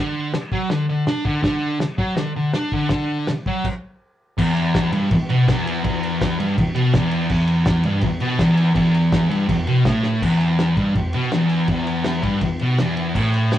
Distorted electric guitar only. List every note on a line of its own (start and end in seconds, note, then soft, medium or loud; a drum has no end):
0.00 0.32 D3 loud
0.34 muted distorted electric guitar stroke medium
0.52 0.70 F#3 loud
0.70 0.85 D3 medium
0.89 1.04 D3 medium
1.07 1.25 D4 loud
1.25 1.42 D3 loud
1.43 1.80 D3 loud
1.81 muted distorted electric guitar stroke medium
1.98 2.16 F#3 loud
2.17 2.32 D3 medium
2.36 2.51 D3 medium
2.54 2.72 D4 loud
2.73 2.90 D3 loud
2.92 3.28 D3 loud
3.30 muted distorted electric guitar stroke medium
3.47 3.65 F#3 medium
4.38 4.92 E2 loud
4.93 5.11 G2 loud
5.12 5.26 E2 medium
5.30 5.48 B2 loud
5.48 5.83 E2 loud
5.84 6.39 E2 loud
6.40 6.57 G2 loud
6.58 6.73 E2 medium
6.75 6.93 B2 loud
6.94 7.30 E2 loud
7.31 7.85 E2 loud
7.85 8.03 G2 loud
8.04 8.18 E2 medium
8.21 8.39 B2 loud
8.39 8.73 E2 loud
8.75 9.30 E2 loud
9.30 9.48 G2 loud
9.49 9.64 E2 medium
9.67 9.85 B2 loud
9.86 10.22 A2 loud
10.22 10.77 E2 loud
10.78 10.95 G2 loud
10.96 11.10 E2 medium
11.14 11.32 B2 loud
11.32 11.68 E2 loud
11.69 12.23 E2 loud
12.23 12.41 G2 medium
12.42 12.57 E2 medium
12.61 12.78 B2 loud
12.79 13.15 E2 loud
13.15 13.59 A2 loud